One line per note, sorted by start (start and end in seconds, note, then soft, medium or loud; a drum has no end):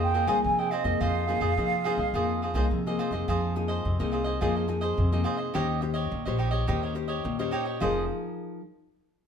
0.00 0.23 F2 medium
0.00 0.41 F3 medium
0.00 0.11 A#3 medium
0.00 0.11 D#4 medium
0.00 0.13 F4 medium
0.00 0.12 G#4 medium
0.00 0.13 G#4 medium
0.00 0.14 C5 medium
0.00 0.14 D#5 medium
0.00 0.28 G5 medium
0.14 0.25 A#3 medium
0.14 0.25 D#4 soft
0.14 0.26 F4 soft
0.14 0.27 G#4 soft
0.14 0.25 G#4 medium
0.14 0.27 C5 soft
0.14 0.27 D#5 medium
0.27 0.41 C2 medium
0.27 0.81 A#3 medium
0.27 0.81 D#4 medium
0.27 0.38 F4 medium
0.27 0.38 G#4 medium
0.27 0.81 G#4 medium
0.27 0.38 C5 medium
0.27 0.38 D#5 medium
0.27 0.43 G#5 medium
0.43 0.98 C3 medium
0.43 0.68 F3 medium
0.43 0.60 G#5 medium
0.59 0.71 G#4 soft
0.59 0.71 C5 soft
0.59 0.71 D#5 soft
0.59 0.72 G5 medium
0.70 0.85 F4 medium
0.70 0.85 G#4 medium
0.70 0.84 C5 medium
0.70 1.02 D#5 medium
0.70 0.83 D#5 medium
0.84 0.97 F2 medium
0.84 1.23 A#3 medium
0.84 1.24 D#4 medium
0.84 1.24 G#4 medium
0.84 0.99 G#4 soft
0.84 0.99 C5 soft
0.84 0.98 D#5 soft
1.00 1.37 F2 medium
1.00 1.55 F3 soft
1.00 1.26 F4 medium
1.00 1.27 G#4 medium
1.00 1.27 C5 medium
1.00 1.28 D#5 medium
1.00 2.71 F5 medium
1.27 1.53 A#3 medium
1.27 1.53 D#4 medium
1.27 1.39 F4 soft
1.27 1.40 G#4 soft
1.27 1.54 G#4 medium
1.27 1.40 C5 soft
1.27 1.41 D#5 soft
1.41 1.54 F2 medium
1.41 1.51 F4 medium
1.41 1.51 G#4 medium
1.41 1.51 C5 medium
1.41 1.52 D#5 medium
1.57 2.12 C3 medium
1.57 1.94 F3 medium
1.57 1.75 A#3 soft
1.57 1.75 D#4 soft
1.57 1.83 F4 soft
1.57 1.84 G#4 soft
1.57 1.75 G#4 medium
1.57 1.84 C5 soft
1.57 1.85 D#5 soft
1.84 2.03 A#3 medium
1.84 2.03 D#4 medium
1.84 1.98 F4 medium
1.84 1.99 G#4 medium
1.84 2.03 G#4 medium
1.84 1.98 C5 medium
1.84 1.97 D#5 medium
1.97 2.11 C2 medium
1.97 2.13 G#4 soft
1.97 2.13 C5 soft
1.97 2.12 D#5 soft
2.14 2.50 F2 medium
2.14 2.69 F3 medium
2.14 2.41 A#3 medium
2.14 2.42 D#4 medium
2.14 2.41 F4 medium
2.14 2.42 G#4 medium
2.14 2.42 C5 medium
2.14 2.43 D#5 medium
2.42 2.53 F4 soft
2.42 2.54 G#4 soft
2.42 2.54 C5 soft
2.42 2.55 D#5 soft
2.54 2.67 C2 medium
2.54 2.80 A#3 medium
2.54 2.80 D#4 medium
2.54 2.65 F4 medium
2.54 2.65 G#4 medium
2.54 2.80 G#4 medium
2.54 2.65 C5 medium
2.54 2.66 D#5 medium
2.71 3.25 C3 soft
2.71 2.95 F3 medium
2.87 3.10 A#3 medium
2.87 3.10 D#4 medium
2.87 3.10 G#4 medium
2.87 2.98 G#4 soft
2.87 2.99 C5 soft
2.87 2.99 D#5 soft
2.99 3.12 F4 medium
2.99 3.12 G#4 medium
2.99 3.12 C5 medium
2.99 3.11 D#5 medium
3.11 3.24 F2 medium
3.11 3.51 A#3 medium
3.11 3.51 D#4 medium
3.11 3.52 G#4 medium
3.11 3.27 G#4 soft
3.11 3.27 C5 soft
3.11 3.26 D#5 soft
3.28 3.76 F2 medium
3.28 3.82 F3 medium
3.28 3.55 F4 medium
3.28 3.55 G#4 medium
3.28 3.55 C5 medium
3.28 3.55 D#5 medium
3.56 3.83 A#3 soft
3.56 3.83 D#4 soft
3.56 3.83 G#4 medium
3.56 muted cavaquinho stroke soft
3.68 3.97 G#4 medium
3.68 3.97 C5 medium
3.68 3.97 D#5 medium
3.85 3.97 F2 medium
3.85 4.39 C3 soft
3.99 4.36 C2 medium
3.99 4.37 A#3 medium
3.99 4.37 D#4 medium
3.99 4.38 G#4 medium
3.99 4.11 G#4 soft
3.99 4.12 C5 soft
3.99 4.12 D#5 soft
4.12 4.25 F4 soft
4.12 4.25 G#4 soft
4.12 4.24 C5 medium
4.12 4.23 D#5 medium
4.24 4.40 G#4 medium
4.24 4.39 C5 medium
4.24 4.39 D#5 medium
4.41 4.90 F2 medium
4.41 4.95 F3 medium
4.41 4.65 A#3 medium
4.41 4.65 D#4 medium
4.41 4.54 F4 medium
4.41 4.55 G#4 medium
4.41 4.66 G#4 medium
4.41 4.55 C5 medium
4.41 4.55 D#5 medium
4.56 4.67 G#4 soft
4.56 4.68 C5 soft
4.56 4.68 D#5 soft
4.68 5.07 A#3 medium
4.68 5.07 D#4 soft
4.68 5.07 G#4 medium
4.68 muted cavaquinho stroke soft
4.81 5.11 G#4 medium
4.81 5.10 C5 medium
4.81 5.10 D#5 medium
4.97 5.22 F2 medium
4.97 5.52 C3 medium
5.12 5.50 A#3 medium
5.12 5.51 D#4 medium
5.12 5.51 G#4 medium
5.12 5.23 G#4 soft
5.12 5.24 C5 soft
5.12 5.25 D#5 soft
5.24 5.38 F4 medium
5.24 5.37 G#4 medium
5.24 5.37 C5 medium
5.24 5.36 D#5 medium
5.37 5.53 G#4 soft
5.37 5.53 C5 soft
5.37 5.52 D#5 soft
5.54 6.03 D#2 medium
5.54 6.08 D#3 medium
5.54 5.78 C#4 medium
5.54 5.80 D#4 medium
5.54 5.80 G4 medium
5.54 5.78 G4 medium
5.54 5.79 C5 medium
5.54 5.80 C#5 medium
5.54 5.81 D#5 medium
5.81 6.09 C#4 medium
5.81 6.09 G4 medium
5.81 6.10 C5 medium
5.81 muted cavaquinho stroke soft
5.94 6.24 G4 medium
5.94 6.23 C#5 medium
5.94 6.23 D#5 medium
6.11 6.24 D#2 medium
6.11 6.65 A#2 medium
6.25 6.62 A#1 medium
6.25 6.64 C#4 medium
6.25 6.37 G4 soft
6.25 6.64 G4 medium
6.25 6.64 C5 medium
6.25 6.38 C#5 soft
6.25 6.39 D#5 soft
6.38 6.52 D#4 medium
6.38 6.51 G4 medium
6.38 6.51 C#5 medium
6.38 6.50 D#5 medium
6.51 6.66 G4 medium
6.51 6.66 C#5 medium
6.51 6.65 D#5 medium
6.67 7.16 D#2 medium
6.67 7.22 D#3 medium
6.67 6.92 C#4 medium
6.67 6.81 D#4 medium
6.67 6.81 G4 medium
6.67 6.92 G4 medium
6.67 6.92 C5 medium
6.67 6.81 C#5 medium
6.67 6.82 D#5 medium
6.83 6.94 G4 soft
6.83 6.94 C#5 soft
6.83 6.95 D#5 soft
6.95 7.22 C#4 medium
6.95 7.22 G4 medium
6.95 7.23 C5 medium
6.95 muted cavaquinho stroke soft
7.08 7.37 G4 medium
7.08 7.37 C#5 medium
7.08 7.36 D#5 medium
7.24 7.49 D#2 medium
7.24 7.78 A#2 medium
7.39 7.77 C#4 medium
7.39 7.77 G4 medium
7.39 7.51 G4 soft
7.39 7.77 C5 medium
7.39 7.51 C#5 soft
7.39 7.52 D#5 soft
7.51 7.65 D#4 medium
7.51 7.65 G4 medium
7.51 7.64 C#5 medium
7.51 7.63 D#5 medium
7.64 7.79 G4 soft
7.64 7.79 C#5 soft
7.64 7.79 D#5 soft
7.80 8.08 F1 medium
7.80 8.60 F3 medium
7.80 8.60 D#4 medium
7.80 8.03 F4 medium
7.80 8.04 G#4 medium
7.80 8.60 G#4 medium
7.80 8.60 A#4 medium
7.80 8.04 C5 medium
7.80 8.04 D#5 medium